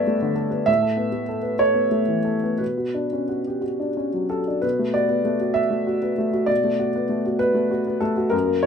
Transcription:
0.00 0.63 G2 medium
0.00 0.07 A3 soft
0.00 0.51 B3 soft
0.00 0.36 A4 soft
0.00 0.70 B4 medium
0.00 0.71 C#5 medium
0.00 0.71 D5 medium
0.00 0.66 E5 medium
0.07 0.31 A3 soft
0.22 0.47 D3 soft
0.36 0.61 A4 soft
0.51 0.67 B3 soft
0.66 2.56 A2 medium
0.66 1.60 E5 medium
0.82 1.07 A4 soft
0.97 1.22 B3 soft
1.12 1.38 A3 soft
1.29 1.54 A4 soft
1.43 1.60 B4 soft
1.59 1.87 A4 soft
1.59 2.60 C#5 medium
1.74 2.02 B3 soft
1.91 2.19 A3 soft
2.08 2.36 E3 soft
2.25 2.53 A4 soft
2.43 2.60 B3 soft
2.58 4.59 B2 soft
2.58 3.62 B4 soft
2.77 3.05 F#4 soft
2.94 3.22 D4 soft
3.13 3.40 C#4 soft
3.29 3.56 F#4 soft
3.47 3.63 G4 soft
3.62 3.89 F#4 soft
3.79 4.07 D4 soft
3.97 4.24 C#4 soft
4.14 4.41 F#3 soft
4.30 4.57 F#4 soft
4.30 4.63 A4 medium
4.48 4.64 D4 soft
4.62 6.46 B2 soft
4.62 4.94 B4 medium
4.79 5.05 A3 soft
4.94 5.20 F#4 soft
4.94 5.58 D5 medium
5.09 5.35 B3 soft
5.25 5.51 A3 soft
5.41 5.85 F#4 soft
5.54 6.48 E5 medium
5.71 5.97 A3 soft
5.87 6.13 F#4 soft
6.02 6.28 B3 soft
6.18 6.43 A3 soft
6.33 6.58 F#4 soft
6.46 8.28 B2 medium
6.46 7.40 D5 medium
6.64 6.89 A3 soft
6.79 7.04 F#4 soft
6.95 7.20 B3 soft
7.09 7.35 A3 soft
7.26 7.69 F#4 soft
7.39 8.02 B4 medium
7.55 7.80 A3 soft
7.71 7.96 F#4 soft
7.87 8.12 B3 soft
8.00 8.27 A3 soft
8.00 8.32 A4 medium
8.17 8.33 F#4 soft
8.30 8.66 F#2 medium
8.30 8.62 A#4 medium
8.46 8.66 A#3 soft
8.63 8.66 C#5 medium

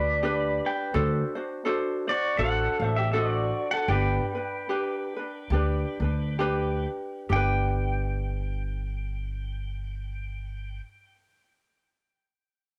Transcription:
0.00 0.58 D2 medium
0.00 0.22 D4 soft
0.00 0.23 F#4 soft
0.00 0.22 B4 medium
0.00 0.61 D5 medium
0.00 0.68 B5 loud
0.23 0.94 D4 medium
0.23 0.94 G4 medium
0.23 0.95 B4 medium
0.66 0.93 B4 medium
0.66 0.93 G5 medium
0.94 1.21 D2 loud
0.94 1.35 D4 medium
0.94 1.35 F#4 medium
0.94 1.35 A4 medium
0.94 1.34 C5 medium
1.35 1.64 D4 medium
1.35 1.65 F#4 medium
1.35 1.65 C5 medium
1.65 2.07 D4 medium
1.65 2.08 F#4 medium
1.65 2.07 A4 medium
1.65 2.06 C5 medium
2.07 2.38 D4 soft
2.07 2.38 F#4 soft
2.07 2.37 F#4 medium
2.07 2.38 C5 medium
2.07 2.37 D5 medium
2.38 2.66 A1 loud
2.38 2.81 D4 medium
2.38 2.81 F#4 medium
2.38 2.81 A4 medium
2.38 2.93 A4 medium
2.38 2.81 C5 medium
2.38 2.86 F#5 loud
2.80 3.50 A1 medium
2.80 3.13 F#4 soft
2.80 3.13 C5 medium
2.85 3.12 D4 soft
2.85 2.97 E5 loud
2.97 3.12 G4 medium
2.97 3.11 E5 medium
3.12 3.90 D4 medium
3.12 3.69 F#4 medium
3.12 3.92 F#4 medium
3.12 3.88 A4 medium
3.12 3.90 C5 medium
3.12 3.30 D#5 medium
3.30 3.71 D5 medium
3.71 3.88 A4 medium
3.71 3.89 F#5 medium
3.88 4.18 G1 loud
3.88 4.35 D4 medium
3.88 4.34 G4 medium
3.88 4.34 B4 medium
3.88 6.88 B4 medium
3.88 6.87 G5 loud
4.35 4.69 D4 soft
4.35 4.68 B4 medium
4.69 5.16 D4 medium
4.69 5.16 G4 medium
4.69 5.15 B4 medium
5.16 5.52 D4 medium
5.16 5.51 B4 medium
5.50 5.83 D2 medium
5.50 6.02 D4 medium
5.50 6.01 G4 medium
5.50 6.01 B4 medium
6.00 6.84 D2 medium
6.00 6.38 B4 medium
6.04 6.39 D4 soft
6.39 7.31 D4 medium
6.39 7.29 G4 medium
6.39 7.35 B4 loud
7.29 10.78 G1 loud
7.29 10.85 D4 medium
7.29 10.82 G4 medium
7.29 10.81 G5 medium
7.36 10.88 B4 loud

